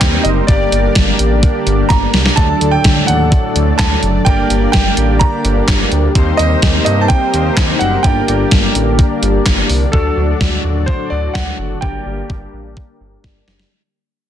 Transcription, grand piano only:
0.00 0.26 G5 loud
0.23 0.29 D#5 medium
0.47 1.38 D5 medium
1.89 2.38 A#5 loud
2.36 2.73 A5 loud
2.71 3.09 G5 loud
3.07 3.52 F#5 medium
3.78 4.27 A5 loud
4.25 4.71 G5 loud
4.72 5.22 G5 loud
5.19 5.87 A#5 loud
6.37 6.83 D#5 loud
6.85 7.03 D#5 medium
7.01 7.09 A5 medium
7.08 7.82 G5 loud
7.79 8.04 F#5 loud
8.03 9.41 G5 loud
9.92 10.90 A4 medium
10.86 11.11 C5 medium
11.10 11.35 D5 medium
11.34 11.78 F#5 loud
11.81 13.19 G5 loud

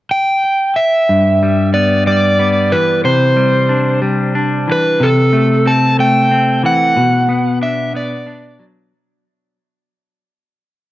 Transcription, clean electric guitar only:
1.09 2.73 G2 soft
1.43 2.06 G3 soft
1.74 2.38 B3 soft
2.07 3.05 G3 soft
2.39 3.05 B3 soft
2.72 3.72 E3 soft
3.04 4.69 C3 soft
3.37 4.01 G3 soft
3.69 4.34 D4 soft
4.02 5.01 G3 soft
4.35 5.01 D4 soft
4.67 5.01 E3 soft
5.00 6.64 C3 soft
5.33 5.98 A3 soft
5.66 6.30 C4 soft
5.99 6.97 A3 soft
6.31 6.97 C4 soft
6.63 6.97 E3 soft
6.97 8.60 B2 soft
7.29 7.93 B3 soft
7.62 8.26 D4 soft
7.94 8.92 B3 soft
8.27 8.92 D4 soft
8.59 8.92 F#3 soft

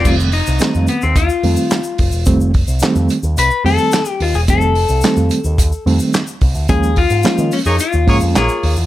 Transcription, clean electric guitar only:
0.07 0.14 F4 loud
0.33 0.89 D#4 loud
0.89 1.03 B3 medium
1.03 1.17 C4 medium
1.17 2.51 F4 loud
3.39 3.64 B4 loud
3.66 4.11 A4 loud
4.11 4.23 G4 loud
4.22 4.36 F4 medium
4.35 4.40 G#4 medium
4.50 5.83 A4 loud
6.69 6.98 G#4 loud
6.98 7.55 F4 loud
7.53 7.58 C#4 medium
7.66 7.80 D#4 medium
7.80 8.86 F4 medium

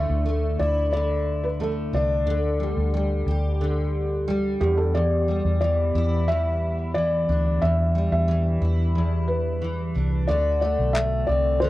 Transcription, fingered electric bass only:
0.10 0.56 D2 medium
0.60 1.90 D2 medium
1.93 2.26 C2 medium
2.26 2.73 D2 medium
2.77 3.23 D2 medium
3.27 4.56 D2 medium
4.61 5.40 E2 medium
5.45 5.91 E2 medium
5.95 7.24 E2 medium
7.29 7.59 D2 medium
7.62 8.08 E2 medium
8.12 8.58 E2 medium
8.62 9.91 E2 medium
9.96 10.26 C2 medium
10.29 10.75 D2 medium
10.79 11.25 B1 medium
11.29 11.70 C2 medium

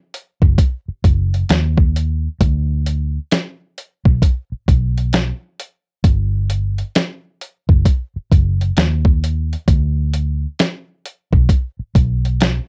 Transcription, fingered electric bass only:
0.42 0.56 F#1 medium
0.88 muted fingered electric bass stroke soft
1.04 1.43 F#1 medium
1.50 2.27 D#2 loud
2.40 3.18 D2 loud
4.06 4.20 B1 medium
4.52 muted fingered electric bass stroke soft
4.68 5.31 B1 medium
6.04 6.81 G1 loud
7.69 7.83 F#1 medium
8.16 muted fingered electric bass stroke soft
8.32 8.70 F#1 medium
8.77 9.54 D#2 loud
9.68 10.45 D2 loud
11.33 11.47 B1 medium
11.79 muted fingered electric bass stroke soft
11.95 12.58 B1 medium

